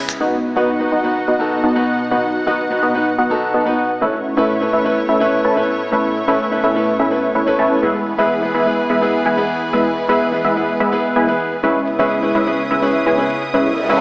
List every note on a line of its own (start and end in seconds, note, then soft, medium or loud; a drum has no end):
0.00 0.17 C#3 medium
0.00 0.17 G#3 medium
0.00 0.17 B3 medium
0.00 0.17 E4 medium
0.09 finger snap medium
0.09 closed hi-hat medium
0.09 shaker medium
0.20 3.98 B2 medium
0.20 0.35 B3 medium
0.20 0.54 B3 medium
0.20 3.98 B3 medium
0.20 0.35 D#4 medium
0.20 0.54 D#4 medium
0.20 3.98 D#4 medium
0.20 0.54 F#4 medium
0.20 3.98 F#4 medium
0.20 0.35 F#4 medium
0.20 0.35 B4 medium
0.20 0.54 D#5 medium
0.20 0.54 F#5 medium
0.20 3.98 F#5 medium
0.56 0.70 B3 medium
0.56 0.89 B3 medium
0.56 0.71 D#4 medium
0.56 0.89 D#4 medium
0.56 0.89 F#4 medium
0.56 0.71 F#4 medium
0.56 0.71 B4 medium
0.56 0.89 D#5 medium
0.56 0.89 F#5 loud
0.80 1.00 B3 medium
0.80 1.00 D#4 medium
0.80 1.01 F#4 medium
0.80 1.01 B4 medium
0.92 1.25 B3 medium
0.92 1.25 D#4 medium
0.92 1.25 F#4 medium
0.92 1.25 D#5 medium
0.92 1.25 F#5 medium
1.03 1.18 B3 medium
1.03 1.18 D#4 medium
1.03 1.18 F#4 medium
1.03 1.19 B4 medium
1.28 1.61 B3 medium
1.28 1.61 D#4 medium
1.28 1.61 F#4 medium
1.28 1.61 D#5 medium
1.28 1.61 F#5 medium
1.39 1.72 B3 medium
1.39 1.72 D#4 medium
1.39 1.73 F#4 medium
1.39 1.73 A4 medium
1.64 1.82 B3 medium
1.64 1.81 D#4 medium
1.64 1.82 F#4 medium
1.64 1.82 D#5 medium
1.64 1.82 A5 medium
1.75 1.98 B3 medium
1.75 1.98 D#4 medium
1.75 1.98 F#4 medium
1.75 1.98 B4 medium
2.11 2.25 B3 medium
2.11 2.44 B3 medium
2.11 2.25 D#4 medium
2.11 2.44 D#4 medium
2.11 2.44 F#4 medium
2.11 2.25 F#4 medium
2.11 2.26 B4 medium
2.11 2.44 D#5 medium
2.11 2.44 F#5 medium
2.35 closed hi-hat medium
2.46 2.61 B3 medium
2.46 2.80 B3 medium
2.46 2.61 D#4 medium
2.46 2.80 D#4 medium
2.46 2.80 F#4 medium
2.46 2.61 F#4 medium
2.46 2.61 B4 medium
2.46 2.80 D#5 medium
2.46 2.80 F#5 loud
2.70 2.91 B3 medium
2.70 2.91 D#4 medium
2.70 2.91 F#4 medium
2.70 2.91 B4 medium
2.83 3.16 B3 medium
2.83 3.16 D#4 medium
2.83 3.16 F#4 medium
2.83 3.16 D#5 medium
2.83 3.16 F#5 medium
2.83 closed hi-hat medium
2.94 3.08 B3 medium
2.94 3.09 D#4 medium
2.94 3.09 F#4 medium
2.94 3.09 B4 medium
3.18 3.51 B3 medium
3.18 3.51 D#4 medium
3.18 3.51 F#4 medium
3.18 3.51 D#5 medium
3.18 3.51 F#5 loud
3.30 3.63 B3 medium
3.30 3.63 D#4 medium
3.30 3.63 F#4 medium
3.30 3.63 A4 medium
3.54 3.72 B3 medium
3.54 3.72 D#4 medium
3.54 3.72 F#4 medium
3.54 3.72 D#5 medium
3.54 3.72 A5 medium
3.54 closed hi-hat soft
3.65 3.88 B3 medium
3.65 3.89 D#4 medium
3.65 3.89 F#4 medium
3.65 3.89 B4 medium
3.78 closed hi-hat medium
4.01 7.79 A2 medium
4.01 4.35 A3 medium
4.01 7.79 A3 medium
4.01 14.01 B3 medium
4.01 4.16 C#4 medium
4.01 4.35 C#4 medium
4.01 4.16 E4 medium
4.01 4.35 E4 medium
4.01 7.79 E4 medium
4.01 4.16 A4 medium
4.01 4.35 B4 medium
4.01 4.16 B4 medium
4.01 7.79 C#5 medium
4.01 4.35 E5 medium
4.01 closed hi-hat soft
4.14 closed hi-hat soft
4.25 closed hi-hat medium
4.37 4.70 A3 medium
4.37 4.51 C#4 medium
4.37 4.70 C#4 medium
4.37 4.52 E4 medium
4.37 4.70 E4 medium
4.37 4.52 A4 medium
4.37 4.70 B4 medium
4.37 4.52 B4 medium
4.37 4.70 E5 loud
4.61 4.81 C#4 medium
4.61 4.81 E4 medium
4.61 4.82 A4 medium
4.61 4.82 B4 medium
4.73 5.06 A3 medium
4.73 5.06 C#4 medium
4.73 5.06 E4 medium
4.73 5.06 B4 medium
4.73 5.06 E5 medium
4.73 closed hi-hat medium
4.85 4.99 C#4 medium
4.85 4.99 E4 medium
4.85 4.99 A4 medium
4.85 5.00 B4 medium
5.09 5.42 A3 medium
5.09 5.42 C#4 medium
5.09 5.42 E4 medium
5.09 5.42 B4 medium
5.09 5.42 E5 loud
5.20 5.53 C#4 medium
5.20 5.54 E4 medium
5.20 5.54 A4 medium
5.20 5.54 B4 medium
5.45 5.62 A3 medium
5.45 5.62 C#4 medium
5.45 5.62 E4 medium
5.45 5.62 B4 medium
5.45 5.62 A5 medium
5.45 closed hi-hat soft
5.56 5.79 C#4 medium
5.56 5.79 E4 medium
5.56 5.79 A4 medium
5.56 5.79 B4 medium
5.68 closed hi-hat medium
5.92 6.25 A3 medium
5.92 6.06 C#4 medium
5.92 6.25 C#4 medium
5.92 6.06 E4 medium
5.92 6.25 E4 medium
5.92 6.06 A4 medium
5.92 6.25 B4 medium
5.92 6.07 B4 medium
5.92 6.25 E5 medium
6.16 closed hi-hat medium
6.27 6.61 A3 medium
6.27 6.42 C#4 medium
6.27 6.61 C#4 medium
6.27 6.42 E4 medium
6.27 6.61 E4 medium
6.27 6.42 A4 medium
6.27 6.61 B4 medium
6.27 6.42 B4 medium
6.27 6.61 E5 loud
6.40 closed hi-hat soft
6.51 6.72 C#4 medium
6.51 6.72 E4 medium
6.51 6.72 A4 medium
6.51 6.72 B4 medium
6.64 6.97 A3 medium
6.64 6.97 C#4 medium
6.64 6.97 E4 medium
6.64 6.97 B4 medium
6.64 6.97 E5 medium
6.64 closed hi-hat medium
6.75 6.89 C#4 medium
6.75 6.90 E4 medium
6.75 6.90 A4 medium
6.75 6.90 B4 medium
6.99 7.32 A3 medium
6.99 7.32 C#4 medium
6.99 7.32 E4 medium
6.99 7.32 B4 medium
6.99 7.32 E5 loud
7.11 7.25 C#4 medium
7.11 7.25 E4 medium
7.11 7.26 A4 medium
7.11 7.26 B4 medium
7.11 closed hi-hat medium
7.23 closed hi-hat soft
7.35 7.55 A3 medium
7.35 7.55 C#4 medium
7.35 7.55 E4 medium
7.35 7.55 B4 medium
7.35 7.55 C#5 medium
7.35 closed hi-hat soft
7.46 7.80 C#4 medium
7.46 7.80 E4 medium
7.46 7.80 A4 medium
7.46 7.80 B4 loud
7.59 7.77 A3 medium
7.59 7.77 C#4 medium
7.59 7.77 E4 medium
7.59 7.77 B4 medium
7.59 7.77 A5 loud
7.59 closed hi-hat medium
7.71 closed hi-hat soft
7.82 11.60 E2 medium
7.82 11.60 E3 medium
7.82 8.16 G#3 medium
7.82 7.97 B3 medium
7.82 8.16 B3 medium
7.82 7.97 E4 medium
7.82 8.16 E4 medium
7.82 11.60 G#4 medium
7.82 7.97 G#4 medium
7.82 11.60 B4 medium
7.82 8.16 B4 medium
7.82 7.97 B4 medium
7.82 8.16 E5 medium
7.82 closed hi-hat soft
7.95 closed hi-hat soft
8.06 closed hi-hat medium
8.18 8.51 G#3 medium
8.18 8.32 B3 medium
8.18 8.51 B3 medium
8.18 8.33 E4 medium
8.18 8.51 E4 medium
8.18 8.33 G#4 medium
8.18 8.51 B4 medium
8.18 8.33 B4 medium
8.18 8.51 E5 loud
8.30 closed hi-hat soft
8.42 8.62 B3 medium
8.42 8.62 E4 medium
8.42 8.63 G#4 medium
8.42 8.63 B4 medium
8.54 8.87 G#3 medium
8.54 8.87 B3 medium
8.54 8.87 E4 medium
8.54 8.87 B4 medium
8.54 8.87 E5 medium
8.54 closed hi-hat medium
8.65 8.80 B3 medium
8.65 8.80 E4 medium
8.65 8.80 G#4 medium
8.65 8.81 B4 medium
8.78 closed hi-hat soft
8.90 9.23 G#3 medium
8.90 9.23 B3 medium
8.90 9.23 E4 medium
8.90 9.23 B4 medium
8.90 9.23 E5 loud
9.01 9.34 B3 medium
9.01 9.35 E4 medium
9.01 9.35 G#4 medium
9.01 9.35 B4 medium
9.01 closed hi-hat medium
9.14 closed hi-hat soft
9.26 9.43 G#3 medium
9.26 9.43 B3 medium
9.26 9.43 E4 medium
9.26 9.43 B4 medium
9.26 9.43 G#5 medium
9.37 9.60 B3 medium
9.37 9.60 E4 medium
9.37 9.60 G#4 medium
9.37 9.60 B4 medium
9.49 closed hi-hat medium
9.73 10.06 G#3 medium
9.73 9.87 B3 medium
9.73 10.06 B3 medium
9.73 9.87 E4 medium
9.73 10.06 E4 medium
9.73 9.87 G#4 medium
9.73 10.06 B4 medium
9.73 9.88 B4 medium
9.73 10.06 E5 medium
9.73 closed hi-hat soft
9.97 closed hi-hat medium
10.08 10.42 G#3 medium
10.08 10.23 B3 medium
10.08 10.42 B3 medium
10.08 10.23 E4 medium
10.08 10.42 E4 medium
10.08 10.23 G#4 medium
10.08 10.42 B4 medium
10.08 10.23 B4 medium
10.08 10.42 E5 loud
10.08 closed hi-hat soft
10.21 closed hi-hat soft
10.32 10.53 B3 medium
10.32 10.53 E4 medium
10.32 10.53 G#4 medium
10.32 10.53 B4 medium
10.32 closed hi-hat soft
10.45 10.77 G#3 medium
10.45 10.77 B3 medium
10.45 10.77 E4 medium
10.45 10.77 B4 medium
10.45 10.77 E5 medium
10.45 closed hi-hat medium
10.56 10.70 B3 medium
10.56 10.71 E4 medium
10.56 10.71 G#4 medium
10.56 10.71 B4 medium
10.56 closed hi-hat soft
10.68 closed hi-hat soft
10.80 11.13 G#3 medium
10.80 11.13 B3 medium
10.80 11.13 E4 medium
10.80 11.13 B4 medium
10.80 11.13 E5 loud
10.80 closed hi-hat soft
10.92 11.25 B3 medium
10.92 11.25 E4 medium
10.92 11.25 G#4 medium
10.92 11.25 B4 medium
10.92 closed hi-hat medium
11.04 closed hi-hat soft
11.16 11.34 G#3 medium
11.16 11.34 B3 medium
11.16 11.34 E4 medium
11.16 11.34 B4 medium
11.16 11.34 G#5 medium
11.16 closed hi-hat soft
11.27 11.50 B3 medium
11.27 11.51 E4 medium
11.27 11.51 G#4 medium
11.27 11.51 B4 medium
11.27 closed hi-hat soft
11.40 closed hi-hat medium
11.52 closed hi-hat soft
11.63 14.01 C#2 medium
11.63 14.01 C#3 medium
11.63 11.96 G#3 medium
11.63 11.78 C#4 medium
11.63 11.96 C#4 medium
11.63 11.78 E4 medium
11.63 11.96 E4 medium
11.63 14.01 E4 medium
11.63 11.78 G#4 medium
11.63 11.96 B4 medium
11.63 11.78 B4 medium
11.63 11.96 E5 medium
11.63 14.01 D#6 medium
11.63 closed hi-hat soft
11.76 closed hi-hat soft
11.87 closed hi-hat medium
11.99 12.32 G#3 medium
11.99 12.13 C#4 medium
11.99 12.32 C#4 medium
11.99 12.13 E4 medium
11.99 12.32 E4 medium
11.99 12.14 G#4 medium
11.99 12.32 B4 medium
11.99 12.14 B4 medium
11.99 12.32 E5 loud
11.99 closed hi-hat soft
12.11 closed hi-hat soft
12.23 12.43 C#4 medium
12.23 12.43 E4 medium
12.23 12.43 G#4 medium
12.23 12.44 B4 medium
12.23 closed hi-hat soft
12.35 12.68 G#3 medium
12.35 12.68 C#4 medium
12.35 12.68 E4 medium
12.35 12.68 B4 medium
12.35 12.68 E5 medium
12.35 closed hi-hat medium
12.46 12.61 C#4 medium
12.46 12.61 E4 medium
12.46 12.61 G#4 medium
12.46 12.61 B4 medium
12.46 closed hi-hat soft
12.59 closed hi-hat soft
12.71 13.04 G#3 medium
12.71 13.04 C#4 medium
12.71 13.04 E4 medium
12.71 13.04 B4 medium
12.71 13.04 E5 loud
12.71 closed hi-hat soft
12.82 13.15 C#4 medium
12.82 13.15 E4 medium
12.82 13.16 G#4 medium
12.82 13.16 B4 loud
12.82 closed hi-hat medium
12.95 closed hi-hat soft
13.06 13.24 G#3 medium
13.06 13.24 C#4 medium
13.06 13.24 E4 medium
13.06 13.24 B4 medium
13.06 13.24 G#5 medium
13.06 closed hi-hat soft
13.18 13.41 C#4 medium
13.18 13.41 E4 medium
13.18 13.41 G#4 medium
13.18 13.41 B4 medium
13.30 closed hi-hat medium
13.42 closed hi-hat soft
13.53 13.87 G#3 medium
13.53 13.68 C#4 medium
13.53 13.87 C#4 medium
13.53 13.68 E4 medium
13.53 13.87 E4 medium
13.53 13.68 G#4 medium
13.53 13.87 B4 medium
13.53 13.69 B4 medium
13.53 13.87 E5 medium
13.53 closed hi-hat medium
13.53 noise sweep medium
13.66 closed hi-hat soft
13.78 closed hi-hat medium
13.89 14.01 G#3 medium
13.89 14.01 C#4 medium
13.89 14.01 E4 medium
13.89 14.01 G#4 medium
13.89 14.01 B4 medium
13.89 14.01 E5 loud
13.89 closed hi-hat soft